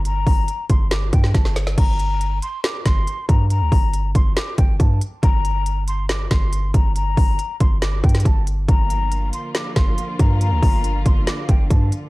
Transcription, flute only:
\new Staff \with { instrumentName = "Flute" } { \time 4/4 \key g \minor \tempo 4 = 139 bes''4. c'''8 d'''8 g''8 a''8 r8 | bes''4. c'''8 d'''8 c'''4 bes''8 | bes''4. c'''8 d'''8 g''8 a''8 r8 | bes''4. c'''8 d'''8 c'''4 bes''8 |
bes''4. c'''8 d'''8 g''8 a''8 r8 | bes''4. c'''8 d'''8 c'''4 bes''8 | bes''4. c'''8 d'''8 g''8 a''8 r8 | }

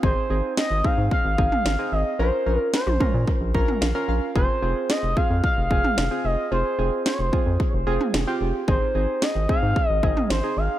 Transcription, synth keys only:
\new Staff \with { instrumentName = "Synth keys" } { \time 4/4 \key f \minor \tempo 4 = 111 << { r1 | r2 r8 bes''8 f''8 f''8 | r1 | r1 |
r1 | } \\ { <c' ees' aes'>8 <c' ees' aes'>4 <c' ees' aes'>4 <c' ees' aes'>8. <c' ees' aes'>8. | <des' f' bes'>8 <des' f' bes'>4 <des' f' bes'>4 <des' f' bes'>8. <des' f' bes'>8. | <c' f' aes'>8 <c' f' aes'>4 <c' f' aes'>4 <c' f' aes'>8. <c' f' aes'>8. | <c' f' aes'>8 <c' f' aes'>4 <c' f' aes'>4 <c' f' aes'>8. <c' f' g'>8. |
<c' ees' aes'>8 <c' ees' aes'>4 <c' ees' aes'>4 <c' ees' aes'>8. <c' ees' aes'>8. | } >> }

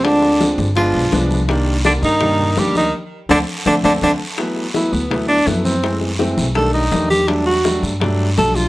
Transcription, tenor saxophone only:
\new Staff \with { instrumentName = "Tenor saxophone" } { \time 4/4 \key d \mixolydian \tempo 4 = 166 d'4~ d'16 r8. f'4. r8 | r4 d'8 ees'4. g'8 ees'8 | r4 d'8 r8 d'8 d'8 d'8 r8 | r4 e'8 b4 d'8 a8 c'8~ |
c'8 r4. a'8 dis'4 g'8 | d'8 fis'4 r4. a'8 f'8 | }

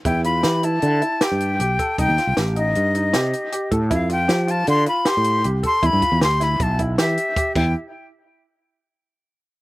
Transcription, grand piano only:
\new Staff \with { instrumentName = "Grand piano" } { \time 5/4 \key e \phrygian \tempo 4 = 156 e'8 f'8 g'8 e'4 e'8 g'4 g'8 a'8 | ees'8 f'8 g'8 ees'4 ees'8 g'4 g'8 a'8 | e'8 f'8 g'8 f'4 f'8 g'4 g'8 a'8 | e'8 f'8 g'8 e'4 e'8 g'4 g'8 e'8 |
r1 r4 | }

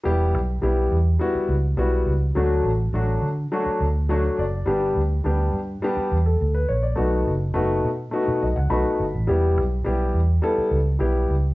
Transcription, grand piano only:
\new Staff \with { instrumentName = "Grand piano" } { \time 4/4 \key e \dorian \tempo 4 = 104 << { r1 | r2. fis''8 d''8 | r2 r8. a'8 b'16 cis''16 d''16~ | d''16 r2 r16 dis''16 fis''16 b''4 |
r1 | } \\ { <g b e' g'>8 r8 <g b e' g'>8 r8 <g b e' fis'>8 r8 <g b e' fis'>8 r8 | <fis a d' fis'>8 r8 <fis a d' fis'>8 r8 <fis a d' fis'>8 r8 <fis a d' fis'>8 r8 | <g b d' g'>8 r8 <g b d' g'>8 r8 <g b d' g'>8 r4. | <a b dis' fis'>8 r8 <a b dis' fis'>8 r8 <a b dis' fis'>8 r8 <a b dis' fis'>8 r8 |
<g b e' g'>8 r8 <g b e' g'>8 r8 <g b e' a'>8 r8 <g b e' g'>8 r8 | } >> }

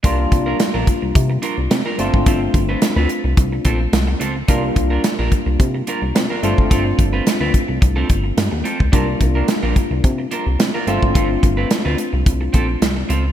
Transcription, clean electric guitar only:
\new Staff \with { instrumentName = "Clean electric guitar" } { \time 4/4 \key g \phrygian \tempo 4 = 108 <d' f' bes'>16 r8 <d' f' bes'>16 r16 <d' f' bes'>16 r4 <d' f' bes'>16 r8 <d' f' bes'>16 <c' f' a'>16 r16 | <c' f' a'>16 r8 <c' f' b'>16 r16 <c' f' b'>16 r4 <c' f' a'>16 r8. <c' f' a'>16 r16 | <d' f' bes'>16 r8 <d' f' bes'>16 r16 <d' f' bes'>16 r4 <d' f' bes'>16 r8 <d' f' bes'>16 <c' f' a'>16 r16 | <c' f' a'>16 r8 <c' f' b'>16 r16 <c' f' b'>16 r8. <c' f' a'>16 r4 <c' f' a'>16 r16 |
<d' f' bes'>16 r8 <d' f' bes'>16 r16 <d' f' bes'>16 r4 <d' f' bes'>16 r8 <d' f' bes'>16 <c' f' a'>16 r16 | <c' f' a'>16 r8 <c' f' b'>16 r16 <c' f' b'>16 r4 <c' f' a'>16 r8. <c' f' a'>16 r16 | }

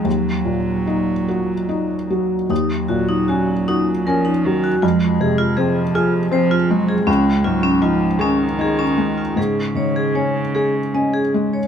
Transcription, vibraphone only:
\new Staff \with { instrumentName = "Vibraphone" } { \time 3/4 \key ees \dorian \tempo 4 = 77 r2. | ees'16 r16 ges'16 ees'16 ges'16 r16 ees'16 r16 bes'16 ees'16 r16 ges'16 | f'16 r16 aes'16 f'16 aes'16 r16 f'16 r16 c''16 f'16 r16 aes'16 | des'16 r16 f'16 des'16 f'16 r16 des'16 r16 aes'16 des'16 r16 f'16 |
aes'16 r16 des''16 aes'16 des''16 r16 aes'16 r16 ees''16 aes'16 r16 des''16 | }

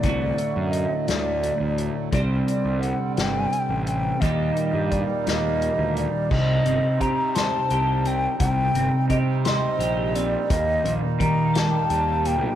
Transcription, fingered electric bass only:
\new Staff \with { instrumentName = "Fingered electric bass" } { \clef bass \time 6/8 \tempo 4. = 57 c,8 r16 fis,8 r16 d,8. d,8 r16 | c,8 r16 c,8 r16 g,,8 r16 a,,8. | ees,8 r16 g,8 r16 ees,8. d,8 r16 | c,8 g,,16 r16 c4 c,4 |
c,8 g,,16 r16 c4 bes,,4 | ees,8 bes,,16 r16 ees4 ees,4 | }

